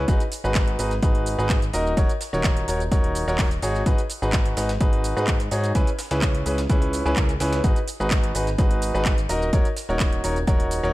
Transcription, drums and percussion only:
0.08 kick, closed hi-hat, shaker
0.20 closed hi-hat, shaker
0.32 closed hi-hat, open hi-hat, shaker
0.45 shaker
0.55 kick, snare, clap, closed hi-hat, shaker
0.68 closed hi-hat
0.79 closed hi-hat, open hi-hat, shaker
0.91 snare, closed hi-hat, shaker
1.02 kick, closed hi-hat, shaker
1.15 closed hi-hat
1.26 closed hi-hat, open hi-hat, shaker
1.39 shaker
1.49 kick, snare, clap, closed hi-hat, shaker
1.62 closed hi-hat, shaker
1.73 closed hi-hat, open hi-hat, shaker
1.87 shaker
1.97 kick, closed hi-hat, shaker
2.09 closed hi-hat, shaker
2.21 snare, closed hi-hat, open hi-hat, shaker
2.34 shaker
2.44 kick, snare, clap, closed hi-hat, shaker
2.57 closed hi-hat
2.68 closed hi-hat, open hi-hat, shaker
2.80 closed hi-hat, shaker
2.91 kick, closed hi-hat, shaker
3.04 closed hi-hat
3.15 closed hi-hat, open hi-hat, shaker
3.28 shaker
3.38 kick, snare, clap, closed hi-hat, open hi-hat, shaker
3.51 closed hi-hat, shaker
3.62 snare, closed hi-hat, open hi-hat, shaker
3.75 snare, shaker
3.86 kick, closed hi-hat, shaker
3.98 closed hi-hat, shaker
4.10 closed hi-hat, open hi-hat, shaker
4.23 shaker
4.33 kick, snare, clap, closed hi-hat, shaker
4.46 closed hi-hat
4.57 snare, closed hi-hat, open hi-hat, shaker
4.69 snare, closed hi-hat, shaker
4.81 kick, closed hi-hat, shaker
4.93 closed hi-hat
5.04 closed hi-hat, open hi-hat, shaker
5.17 shaker
5.27 kick, clap, closed hi-hat, shaker
5.40 closed hi-hat, shaker
5.51 open hi-hat, shaker
5.64 closed hi-hat, shaker
5.75 kick, closed hi-hat, shaker
5.87 closed hi-hat, shaker
5.99 snare, closed hi-hat, open hi-hat, shaker
6.11 snare, closed hi-hat, shaker
6.22 kick, snare, clap, closed hi-hat, shaker
6.35 closed hi-hat
6.46 closed hi-hat, open hi-hat, shaker
6.58 snare, closed hi-hat, shaker
6.69 kick, closed hi-hat, shaker
6.82 closed hi-hat
6.93 closed hi-hat, open hi-hat, shaker
7.06 shaker
7.16 kick, clap, closed hi-hat, shaker
7.29 closed hi-hat, shaker
7.40 snare, closed hi-hat, open hi-hat, shaker
7.53 snare, closed hi-hat, shaker
7.64 kick, closed hi-hat, shaker
7.76 closed hi-hat, shaker
7.88 closed hi-hat, open hi-hat, shaker
8.01 shaker
8.11 kick, snare, clap, closed hi-hat, shaker
8.24 closed hi-hat
8.35 closed hi-hat, open hi-hat, shaker
8.47 snare, closed hi-hat, shaker
8.58 kick, closed hi-hat, shaker
8.71 closed hi-hat
8.82 closed hi-hat, open hi-hat, shaker
8.95 shaker
9.05 kick, snare, clap, closed hi-hat, shaker
9.18 closed hi-hat, shaker
9.29 closed hi-hat, open hi-hat, shaker
9.42 shaker
9.53 kick, closed hi-hat, shaker
9.65 closed hi-hat, shaker
9.77 snare, closed hi-hat, open hi-hat, shaker
9.90 shaker
10.00 kick, snare, clap, closed hi-hat, shaker
10.12 closed hi-hat
10.24 closed hi-hat, open hi-hat, shaker
10.36 closed hi-hat, shaker
10.47 kick, closed hi-hat, shaker
10.60 closed hi-hat
10.71 closed hi-hat, open hi-hat, shaker
10.84 shaker

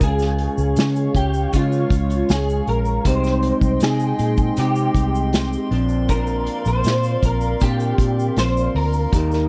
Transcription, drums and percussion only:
0.01 kick, closed hi-hat, shaker
0.19 snare, shaker
0.38 closed hi-hat
0.58 shaker
0.76 snare, closed hi-hat, shaker
0.96 closed hi-hat, shaker
1.15 kick, closed hi-hat, shaker
1.34 shaker
1.53 kick, closed hi-hat, shaker
1.72 shaker
1.90 kick, closed hi-hat, shaker
2.10 closed hi-hat, shaker
2.29 snare, closed hi-hat, shaker
2.49 shaker
2.67 closed hi-hat
2.85 shaker
3.05 kick, closed hi-hat, shaker
3.24 snare, shaker
3.42 closed hi-hat
3.61 kick, shaker
3.80 snare, closed hi-hat, shaker
4.00 shaker
4.19 closed hi-hat, shaker
4.37 kick, shaker
4.57 closed hi-hat, shaker
4.75 shaker
4.95 kick, closed hi-hat, shaker
5.15 shaker
5.33 snare, closed hi-hat, shaker
5.53 shaker
5.72 closed hi-hat
5.89 shaker
6.09 kick, closed hi-hat, shaker
6.27 shaker
6.47 closed hi-hat
6.65 shaker
6.84 snare, closed hi-hat, shaker
7.03 closed hi-hat, shaker
7.23 kick, closed hi-hat, shaker
7.41 shaker
7.60 kick, closed hi-hat, shaker
7.80 shaker
7.98 kick, closed hi-hat, shaker
8.20 shaker
8.36 snare, closed hi-hat, shaker
8.57 shaker
8.75 open hi-hat
8.93 shaker
9.13 kick, closed hi-hat, shaker
9.31 snare, shaker

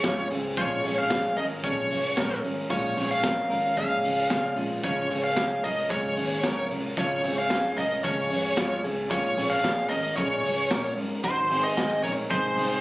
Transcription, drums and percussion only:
0.04 kick, snare, closed hi-hat
0.31 open hi-hat
0.57 kick, closed hi-hat
0.84 open hi-hat
1.10 kick, snare, closed hi-hat
1.37 open hi-hat
1.64 kick, closed hi-hat
1.91 open hi-hat
2.17 kick, snare, closed hi-hat
2.44 open hi-hat
2.70 kick, closed hi-hat
2.97 open hi-hat
3.24 kick, snare, closed hi-hat
3.51 open hi-hat
3.77 kick, closed hi-hat
4.04 open hi-hat
4.30 kick, snare, closed hi-hat
4.57 open hi-hat
4.84 kick, closed hi-hat
5.10 open hi-hat
5.36 kick, snare, closed hi-hat
5.64 open hi-hat
5.90 kick, closed hi-hat
6.17 open hi-hat
6.43 kick, snare, closed hi-hat
6.71 open hi-hat
6.97 kick, closed hi-hat
7.24 open hi-hat
7.50 kick, snare, closed hi-hat
7.78 open hi-hat
8.04 kick, closed hi-hat
8.31 open hi-hat
8.57 kick, snare, closed hi-hat
8.84 open hi-hat
9.11 kick, closed hi-hat
9.38 open hi-hat
9.64 kick, snare, closed hi-hat
9.91 open hi-hat
10.18 kick, closed hi-hat
10.45 open hi-hat
10.71 kick, snare, closed hi-hat
10.98 open hi-hat
11.24 kick, closed hi-hat
11.51 open hi-hat
11.77 kick, snare, closed hi-hat
12.05 open hi-hat
12.31 kick, closed hi-hat
12.57 open hi-hat

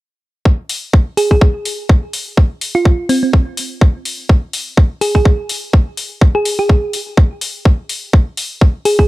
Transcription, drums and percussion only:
0.45 kick
0.69 open hi-hat
0.93 kick
1.17 open hi-hat
1.31 kick
1.41 kick
1.65 open hi-hat
1.89 kick
2.13 open hi-hat
2.37 kick
2.61 open hi-hat
2.85 kick
3.09 open hi-hat
3.33 kick
3.57 open hi-hat
3.81 kick
4.05 open hi-hat
4.29 kick
4.53 open hi-hat
4.77 kick
5.01 open hi-hat
5.15 kick
5.25 kick
5.49 open hi-hat
5.73 kick
5.97 open hi-hat
6.21 kick
6.45 open hi-hat
6.69 kick
6.93 open hi-hat
7.17 kick
7.41 open hi-hat
7.65 kick
7.89 open hi-hat
8.13 kick
8.37 open hi-hat
8.61 kick
8.85 open hi-hat
8.99 kick

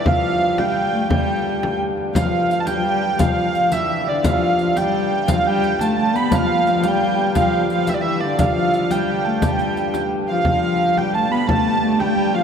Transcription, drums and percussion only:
0.06 frame drum
0.58 frame drum
1.10 frame drum
1.46 frame drum
1.63 frame drum
1.81 frame drum
1.97 frame drum
2.15 riq, frame drum
2.51 riq
2.67 riq, frame drum
3.19 riq, frame drum
3.55 riq
3.72 riq, frame drum
4.24 riq, frame drum
4.59 riq
4.77 riq, frame drum
5.28 riq, frame drum
5.63 riq, frame drum
5.79 riq, frame drum
5.97 frame drum
6.15 riq, frame drum
6.32 riq, frame drum
6.67 riq
6.83 riq, frame drum
7.35 riq, frame drum
7.70 riq
7.87 riq, frame drum
8.39 riq, frame drum
8.74 riq
8.91 riq, frame drum
9.42 riq, frame drum
9.59 riq
9.76 riq, frame drum
9.94 riq, frame drum
10.45 frame drum
10.97 frame drum
11.15 frame drum
11.49 frame drum
12.00 frame drum
12.17 frame drum

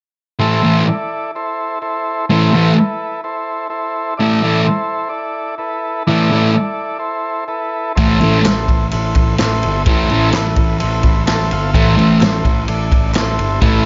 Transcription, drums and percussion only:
7.97 kick, ride
8.21 ride
8.45 snare, clap, ride
8.68 kick, ride
8.91 ride
9.15 kick, ride
9.38 snare, clap, ride
9.63 ride
9.86 kick, ride
10.09 ride
10.32 snare, clap, ride
10.56 kick, ride
10.80 ride
11.03 kick, ride
11.27 snare, clap, ride
11.51 ride
11.74 kick, ride
11.99 ride
12.21 snare, clap, ride
12.45 kick, ride
12.68 ride
12.92 kick, ride
13.14 snare, clap, ride
13.39 ride
13.62 kick, ride

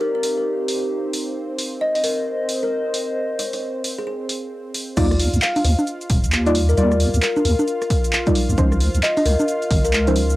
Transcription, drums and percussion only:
0.23 open hi-hat
0.68 open hi-hat
1.13 open hi-hat
1.59 open hi-hat
1.95 open hi-hat
2.04 open hi-hat
2.49 open hi-hat
2.94 open hi-hat
3.39 open hi-hat
3.53 open hi-hat
3.84 open hi-hat
4.29 open hi-hat
4.74 open hi-hat
4.97 kick, closed hi-hat, crash, shaker
5.11 cross-stick, shaker
5.19 open hi-hat
5.34 closed hi-hat, shaker
5.42 clap, shaker
5.56 open hi-hat, high conga, shaker
5.65 open hi-hat
5.79 high conga, shaker
5.87 closed hi-hat, shaker
6.01 closed hi-hat, shaker
6.10 kick, open hi-hat
6.24 closed hi-hat, shaker
6.32 clap, shaker
6.46 closed hi-hat, shaker
6.55 open hi-hat
6.69 shaker
6.77 closed hi-hat, shaker
6.92 cross-stick, shaker
7.00 open hi-hat
7.14 closed hi-hat, shaker
7.22 clap, shaker
7.37 high conga, shaker
7.45 open hi-hat
7.59 high conga, shaker
7.68 closed hi-hat, shaker
7.82 cross-stick, closed hi-hat, shaker
7.90 kick, open hi-hat
8.04 closed hi-hat, shaker
8.13 clap, shaker
8.27 kick, closed hi-hat, shaker
8.35 open hi-hat
8.49 shaker
8.58 kick, closed hi-hat, shaker
8.72 cross-stick, shaker
8.80 open hi-hat
8.95 closed hi-hat, shaker
9.03 clap, shaker
9.17 open hi-hat, high conga, shaker
9.26 open hi-hat
9.40 high conga, shaker
9.48 closed hi-hat, shaker
9.62 closed hi-hat, shaker
9.71 kick, open hi-hat
9.85 closed hi-hat, shaker
9.93 clap, shaker
10.07 closed hi-hat, shaker
10.16 open hi-hat
10.30 shaker

